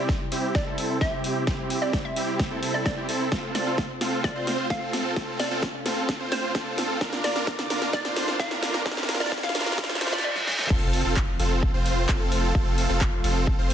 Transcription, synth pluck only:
0.55 0.99 D5 medium
1.01 1.15 E5 medium
1.82 1.96 D5 medium
2.05 2.51 E5 medium
2.74 2.82 D5 medium
2.86 2.93 D5 medium
3.55 3.69 D5 medium
4.24 4.68 D5 medium
4.70 4.85 F5 medium
5.39 5.54 D5 medium
6.32 6.78 C5 medium
7.24 7.38 D5 medium
7.93 8.37 D5 medium
8.39 8.54 F5 medium
9.20 9.35 D5 medium
9.43 9.89 F5 medium
10.13 10.20 D5 medium
10.24 10.32 D5 medium

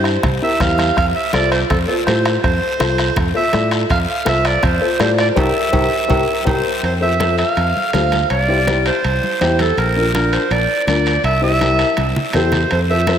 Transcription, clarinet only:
0.00 0.11 C5 loud
0.43 0.62 E5 medium
0.61 0.97 F5 loud
0.98 1.06 F5 loud
1.15 1.32 E5 medium
1.33 1.50 D5 medium
1.51 1.60 C5 medium
1.70 1.78 A4 medium
1.88 1.96 A4 medium
2.06 2.40 C5 medium
2.43 3.31 C5 loud
3.36 3.70 E5 medium
3.91 3.99 F5 medium
4.10 4.26 F5 medium
4.29 4.48 E5 medium
4.47 4.66 D5 medium
4.64 5.01 C5 medium
5.02 5.10 C5 medium
5.20 5.28 D5 medium
5.40 6.44 E5 medium
6.47 6.81 C5 medium
6.85 6.93 C5 medium
7.02 7.36 E5 medium
7.38 7.90 F5 medium
7.94 8.28 F5 medium
8.30 8.82 D5 medium
8.87 9.62 C5 medium
9.61 9.80 A4 medium
9.78 10.14 A#4 medium
10.14 10.34 A#4 medium
10.33 10.53 C5 medium
10.52 10.87 D5 medium
10.87 11.22 D5 medium
11.25 11.42 E5 medium
11.43 12.04 E5 medium
12.35 12.69 C5 medium
12.72 12.80 C5 medium
12.90 13.17 E5 medium

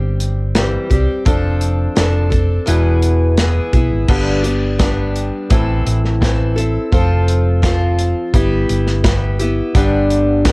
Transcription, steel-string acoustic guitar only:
0.00 0.55 G3 soft
0.00 0.57 C4 medium
0.00 0.56 G4 medium
0.55 0.91 E3 medium
0.55 0.92 G3 medium
0.55 0.90 C4 medium
0.55 0.88 G4 medium
0.90 1.25 G3 soft
0.90 1.25 C4 soft
0.90 1.26 G4 medium
1.25 1.94 F3 medium
1.25 1.96 C4 medium
1.25 1.96 D4 medium
1.25 1.97 A4 medium
1.95 2.32 F3 medium
1.95 2.32 C4 medium
1.95 2.31 D4 medium
1.95 2.29 A4 medium
2.30 2.67 C4 soft
2.30 2.67 D4 soft
2.30 2.67 A4 medium
2.66 3.38 E2 medium
2.66 3.38 B2 medium
2.66 3.36 E3 medium
2.66 3.37 B3 medium
2.66 3.38 E4 medium
2.66 3.39 G#4 medium
3.37 3.73 E3 medium
3.37 3.74 B3 medium
3.37 3.73 E4 medium
3.37 3.72 G#4 medium
3.73 4.09 E3 soft
3.73 4.08 B3 soft
3.73 4.10 E4 soft
3.73 4.09 G#4 medium
4.08 4.44 G2 medium
4.08 4.45 D3 medium
4.08 4.45 G3 medium
4.08 4.45 B3 medium
4.08 4.44 D4 medium
4.08 4.42 G4 medium
4.43 4.77 G3 soft
4.43 4.79 B3 soft
4.43 4.80 D4 soft
4.43 4.79 G4 medium
4.79 5.50 G3 medium
4.79 5.50 B3 medium
4.79 5.51 D4 medium
4.79 5.52 G4 medium
5.50 6.21 A2 medium
5.50 6.19 E3 medium
5.50 6.21 C4 medium
5.50 6.22 E4 medium
5.50 6.22 A4 medium
6.21 6.57 E3 medium
6.21 6.57 C4 medium
6.21 6.57 E4 medium
6.21 6.55 A4 medium
6.56 6.92 C4 soft
6.56 6.93 E4 soft
6.56 6.92 A4 medium
6.92 7.61 F3 medium
6.92 7.62 C4 medium
6.92 7.63 F4 medium
6.92 7.64 A4 medium
7.62 8.33 F3 medium
7.62 8.34 C4 medium
7.62 8.35 F4 medium
7.62 8.35 A4 medium
8.34 9.03 G3 medium
8.34 9.04 B3 medium
8.34 9.05 E4 medium
8.34 9.06 G4 loud
9.04 9.40 G3 medium
9.04 9.40 B3 medium
9.04 9.40 E4 medium
9.04 9.38 G4 medium
9.39 9.75 B3 soft
9.39 9.76 E4 medium
9.39 9.75 G4 medium
9.75 10.46 G2 medium
9.75 10.46 D3 medium
9.75 10.44 G3 loud
9.75 10.45 B3 medium
9.75 10.46 D4 medium
9.75 10.47 G4 loud
10.45 10.52 G3 medium
10.45 10.52 B3 medium
10.45 10.52 D4 medium
10.45 10.52 G4 medium

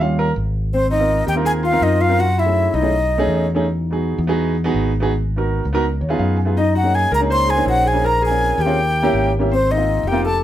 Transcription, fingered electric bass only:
0.00 0.32 D#2 loud
0.36 1.21 G#1 loud
1.27 1.78 D#2 medium
1.81 2.67 F#2 medium
2.74 3.24 B1 medium
3.27 4.13 E2 loud
4.18 4.70 E2 medium
4.74 5.59 G#1 loud
5.65 5.99 C#2 medium
6.01 6.18 D#2 medium
6.19 7.05 F#2 medium
7.12 7.62 C#2 medium
7.66 8.51 A#1 medium
8.58 9.09 D#2 medium
9.13 9.98 G#1 medium
10.03 10.44 F1 medium

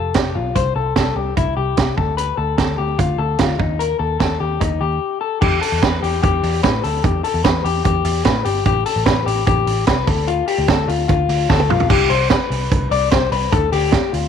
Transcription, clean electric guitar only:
0.00 0.15 A4 medium
0.15 0.35 G4 medium
0.35 0.56 F4 medium
0.55 0.75 C5 medium
0.76 0.95 A4 medium
0.96 1.16 A4 medium
1.16 1.36 G4 medium
1.37 1.56 E4 medium
1.57 1.95 G4 medium
1.97 2.17 A4 medium
2.17 2.37 B4 medium
2.37 2.56 A4 medium
2.58 2.78 A4 medium
2.78 2.99 G4 medium
2.98 3.19 F4 medium
3.18 3.39 A4 medium
3.39 3.58 F4 medium
3.59 3.80 D#4 medium
3.79 3.99 A#4 medium
3.99 4.18 A4 medium
4.20 4.40 A4 medium
4.40 4.61 G4 medium
4.60 4.81 D#4 medium
4.81 5.19 G4 medium
5.21 5.41 A4 medium
5.41 5.61 G4 medium
5.62 5.82 A4 medium
5.82 6.02 B4 medium
6.03 6.21 G4 medium
6.23 6.61 G4 medium
6.63 6.83 B4 medium
6.84 7.04 A4 medium
7.04 7.24 G4 loud
7.24 7.44 A4 medium
7.44 7.64 B4 medium
7.64 7.83 G4 medium
7.85 8.23 G4 medium
8.25 8.44 B4 medium
8.45 8.64 G4 medium
8.66 8.85 G4 loud
8.86 9.05 A4 medium
9.06 9.26 B4 medium
9.26 9.45 G4 medium
9.47 9.85 G4 medium
9.87 10.07 B4 medium
10.07 10.28 A4 medium
10.28 10.47 F4 loud
10.48 10.68 G4 medium
10.68 10.89 A4 medium
10.88 11.07 F4 medium
11.08 11.47 F4 medium
11.49 11.70 A4 medium
11.69 11.89 F4 medium
11.90 12.10 G4 loud
12.10 12.30 C5 medium
12.30 12.88 B4 medium
12.91 13.11 D5 medium
13.11 13.31 C5 medium
13.32 13.52 B4 medium
13.52 13.72 A4 loud
13.72 14.12 G4 medium
14.12 14.28 F4 medium

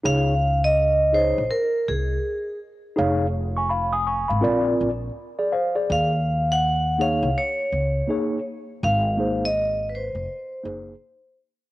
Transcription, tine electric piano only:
0.04 0.33 D#4 medium
0.04 0.33 G#4 medium
0.04 0.33 C#5 medium
0.04 0.34 F5 medium
1.12 1.42 D#4 medium
1.12 1.42 G#4 medium
1.12 1.43 C#5 soft
1.12 1.43 D#5 medium
2.96 3.25 D#4 medium
2.96 3.25 G#4 medium
2.96 3.26 C#5 medium
2.96 3.26 F5 medium
3.57 3.70 G#5 medium
3.57 3.70 C#6 medium
3.69 3.92 F5 soft
3.69 3.92 B5 medium
3.93 4.06 G#5 medium
3.93 4.06 D#6 medium
4.07 4.29 G#5 medium
4.07 4.29 C#6 medium
4.28 4.64 F5 soft
4.28 4.64 B5 medium
4.41 4.88 C4 medium
4.41 4.88 F4 medium
4.41 4.89 A#4 medium
4.41 4.89 D5 medium
5.39 5.52 G#4 medium
5.39 5.52 D5 medium
5.52 5.75 C5 medium
5.52 5.75 F5 medium
5.76 6.11 G#4 soft
5.76 6.11 D5 medium
6.99 7.28 A#3 medium
6.99 7.28 D#4 medium
6.99 7.28 G#4 medium
6.99 7.29 C#5 medium
8.08 8.37 A#3 medium
8.08 8.38 D#4 medium
8.08 8.38 G#4 medium
8.08 8.38 C#5 medium
9.17 9.47 A#3 medium
9.17 9.47 D#4 medium
9.17 9.48 G#4 medium
9.17 9.48 C5 medium
10.63 10.93 A#3 medium
10.63 10.93 D#4 medium
10.63 10.94 G#4 medium
10.63 10.94 C5 medium

